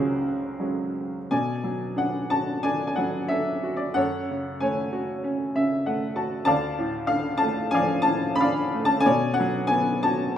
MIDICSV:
0, 0, Header, 1, 2, 480
1, 0, Start_track
1, 0, Tempo, 701754
1, 893, Time_signature, 4, 2, 24, 8
1, 894, Tempo, 665188
1, 2814, Tempo, 630915
1, 5694, Tempo, 661521
1, 7598, End_track
2, 0, Start_track
2, 0, Title_t, "Upright piano"
2, 0, Program_c, 0, 0
2, 0, Control_c, 0, 64, 127
2, 0, Note_on_c, 0, 37, 48
2, 0, Note_on_c, 0, 42, 55
2, 0, Note_on_c, 0, 54, 43
2, 0, Note_on_c, 0, 56, 38
2, 0, Note_on_c, 0, 61, 45
2, 0, Note_on_c, 0, 66, 66
2, 0, Note_on_c, 0, 68, 69
2, 0, Note_on_c, 0, 70, 71
2, 0, Note_on_c, 0, 72, 79
2, 408, Note_off_c, 0, 54, 0
2, 408, Note_on_c, 0, 54, 34
2, 409, Note_off_c, 0, 61, 0
2, 410, Note_off_c, 0, 56, 0
2, 410, Note_on_c, 0, 56, 31
2, 419, Note_on_c, 0, 61, 40
2, 623, Note_off_c, 0, 68, 0
2, 793, Note_off_c, 0, 54, 0
2, 794, Note_off_c, 0, 56, 0
2, 800, Note_off_c, 0, 61, 0
2, 861, Note_off_c, 0, 42, 0
2, 865, Note_off_c, 0, 37, 0
2, 895, Note_on_c, 0, 80, 74
2, 898, Note_on_c, 0, 47, 50
2, 903, Note_on_c, 0, 74, 56
2, 904, Control_c, 0, 64, 0
2, 907, Note_off_c, 0, 70, 0
2, 908, Note_off_c, 0, 66, 0
2, 910, Note_off_c, 0, 72, 0
2, 1026, Control_c, 0, 64, 127
2, 1132, Note_on_c, 0, 54, 41
2, 1368, Note_on_c, 0, 62, 48
2, 1379, Note_on_c, 0, 78, 77
2, 1396, Note_off_c, 0, 80, 0
2, 1612, Note_on_c, 0, 81, 78
2, 1619, Note_on_c, 0, 66, 43
2, 1627, Note_off_c, 0, 78, 0
2, 1837, Note_off_c, 0, 74, 0
2, 1844, Note_off_c, 0, 62, 0
2, 1849, Note_on_c, 0, 80, 78
2, 1853, Note_on_c, 0, 74, 61
2, 1854, Note_on_c, 0, 62, 46
2, 1864, Note_off_c, 0, 81, 0
2, 2013, Note_off_c, 0, 80, 0
2, 2024, Note_on_c, 0, 80, 59
2, 2069, Note_off_c, 0, 54, 0
2, 2084, Note_on_c, 0, 78, 68
2, 2088, Note_off_c, 0, 80, 0
2, 2097, Note_on_c, 0, 54, 44
2, 2321, Note_on_c, 0, 76, 71
2, 2325, Note_off_c, 0, 62, 0
2, 2336, Note_on_c, 0, 62, 41
2, 2339, Note_off_c, 0, 78, 0
2, 2339, Note_on_c, 0, 69, 46
2, 2548, Note_off_c, 0, 66, 0
2, 2573, Note_on_c, 0, 66, 45
2, 2657, Note_off_c, 0, 74, 0
2, 2660, Note_off_c, 0, 76, 0
2, 2668, Note_on_c, 0, 74, 66
2, 2785, Note_off_c, 0, 69, 0
2, 2787, Note_off_c, 0, 47, 0
2, 2790, Note_off_c, 0, 54, 0
2, 2791, Note_off_c, 0, 74, 0
2, 2795, Note_on_c, 0, 78, 87
2, 2797, Note_off_c, 0, 62, 0
2, 2803, Note_on_c, 0, 69, 55
2, 2805, Note_off_c, 0, 66, 0
2, 2810, Note_on_c, 0, 42, 49
2, 2810, Note_on_c, 0, 73, 61
2, 2825, Control_c, 0, 64, 0
2, 2978, Control_c, 0, 64, 127
2, 3064, Note_on_c, 0, 49, 50
2, 3298, Note_on_c, 0, 80, 66
2, 3301, Note_off_c, 0, 73, 0
2, 3302, Note_on_c, 0, 57, 48
2, 3312, Note_on_c, 0, 73, 54
2, 3313, Note_off_c, 0, 78, 0
2, 3544, Note_on_c, 0, 66, 50
2, 3754, Note_off_c, 0, 69, 0
2, 3755, Note_off_c, 0, 80, 0
2, 3782, Note_on_c, 0, 61, 52
2, 3999, Note_off_c, 0, 49, 0
2, 4020, Note_on_c, 0, 49, 47
2, 4022, Note_on_c, 0, 76, 66
2, 4229, Note_off_c, 0, 57, 0
2, 4233, Note_off_c, 0, 73, 0
2, 4242, Note_off_c, 0, 76, 0
2, 4255, Note_on_c, 0, 78, 58
2, 4256, Note_on_c, 0, 57, 50
2, 4462, Note_off_c, 0, 66, 0
2, 4475, Note_off_c, 0, 78, 0
2, 4480, Note_on_c, 0, 81, 55
2, 4481, Note_on_c, 0, 66, 52
2, 4691, Note_off_c, 0, 81, 0
2, 4695, Note_off_c, 0, 42, 0
2, 4695, Note_off_c, 0, 61, 0
2, 4703, Note_off_c, 0, 49, 0
2, 4703, Note_on_c, 0, 81, 93
2, 4711, Note_off_c, 0, 57, 0
2, 4714, Note_off_c, 0, 66, 0
2, 4715, Note_on_c, 0, 38, 62
2, 4720, Note_on_c, 0, 74, 67
2, 4720, Note_on_c, 0, 77, 63
2, 4738, Control_c, 0, 64, 0
2, 4870, Control_c, 0, 64, 127
2, 4959, Note_on_c, 0, 45, 59
2, 5164, Note_off_c, 0, 77, 0
2, 5175, Note_on_c, 0, 77, 81
2, 5192, Note_on_c, 0, 50, 56
2, 5208, Note_off_c, 0, 81, 0
2, 5407, Note_on_c, 0, 81, 90
2, 5417, Note_off_c, 0, 77, 0
2, 5443, Note_on_c, 0, 57, 57
2, 5652, Note_off_c, 0, 81, 0
2, 5658, Note_off_c, 0, 74, 0
2, 5661, Note_on_c, 0, 80, 93
2, 5683, Note_on_c, 0, 53, 54
2, 5687, Note_on_c, 0, 77, 69
2, 5688, Note_on_c, 0, 74, 63
2, 5887, Note_on_c, 0, 81, 93
2, 5896, Note_off_c, 0, 45, 0
2, 5918, Note_on_c, 0, 45, 50
2, 5919, Note_off_c, 0, 80, 0
2, 6131, Note_on_c, 0, 83, 96
2, 6132, Note_off_c, 0, 50, 0
2, 6154, Note_off_c, 0, 74, 0
2, 6155, Note_off_c, 0, 81, 0
2, 6157, Note_off_c, 0, 77, 0
2, 6164, Note_on_c, 0, 50, 54
2, 6165, Note_on_c, 0, 74, 67
2, 6168, Note_on_c, 0, 77, 75
2, 6377, Note_off_c, 0, 57, 0
2, 6409, Note_on_c, 0, 57, 53
2, 6491, Note_on_c, 0, 81, 89
2, 6522, Note_off_c, 0, 83, 0
2, 6602, Note_on_c, 0, 80, 100
2, 6612, Note_off_c, 0, 38, 0
2, 6614, Note_off_c, 0, 53, 0
2, 6618, Note_off_c, 0, 74, 0
2, 6619, Note_off_c, 0, 77, 0
2, 6619, Note_off_c, 0, 81, 0
2, 6621, Note_off_c, 0, 45, 0
2, 6631, Note_off_c, 0, 50, 0
2, 6640, Note_off_c, 0, 57, 0
2, 6640, Note_on_c, 0, 73, 69
2, 6640, Note_on_c, 0, 74, 74
2, 6643, Note_on_c, 0, 47, 62
2, 6656, Control_c, 0, 64, 0
2, 6780, Control_c, 0, 64, 127
2, 6843, Note_on_c, 0, 78, 85
2, 6869, Note_off_c, 0, 80, 0
2, 6887, Note_on_c, 0, 54, 58
2, 7086, Note_on_c, 0, 80, 91
2, 7109, Note_off_c, 0, 78, 0
2, 7115, Note_on_c, 0, 59, 59
2, 7327, Note_off_c, 0, 80, 0
2, 7345, Note_on_c, 0, 81, 90
2, 7362, Note_on_c, 0, 66, 57
2, 7580, Note_off_c, 0, 73, 0
2, 7580, Note_off_c, 0, 74, 0
2, 7581, Note_off_c, 0, 47, 0
2, 7585, Note_off_c, 0, 81, 0
2, 7592, Note_off_c, 0, 54, 0
2, 7595, Note_off_c, 0, 59, 0
2, 7598, Note_off_c, 0, 66, 0
2, 7598, End_track
0, 0, End_of_file